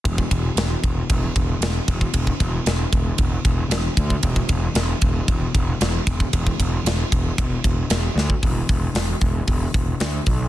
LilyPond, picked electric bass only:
\new Staff \with { instrumentName = "Picked electric bass" } { \clef bass \time 4/4 \key d \mixolydian \tempo 4 = 115 e,,8 e,,8 e,,8 e,,8 e,,8 e,,8 e,,8 e,,8 | e,,8 e,,8 e,,8 e,,8 e,,8 e,,8 e,,8 d,8 | e,,8 e,,8 e,,8 e,,8 e,,8 e,,8 e,,8 e,,8 | e,,8 e,,8 e,,8 e,,8 e,,8 e,,8 e,,8 d,8 |
e,,8 e,,8 e,,8 e,,8 e,,8 e,,8 d,8 b,,8 | }